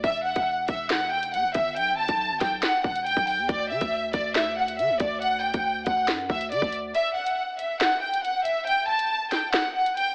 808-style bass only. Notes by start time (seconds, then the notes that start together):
0.04 E1
0.36 E1
0.69 E1
1.33 E2
1.44 E1
1.55 G1
1.76 B1
1.93 G1
2.09 B1
2.30 G1
2.41 B1
2.84 E1
3.17 B1
3.38 E2
3.49 D2
3.71 D3
3.81 D2
4.14 D2
4.79 D3
4.89 D2
5.00 D2
5.54 D2
5.87 D2
6.08 F#2
6.30 D2
6.51 D3
6.62 D2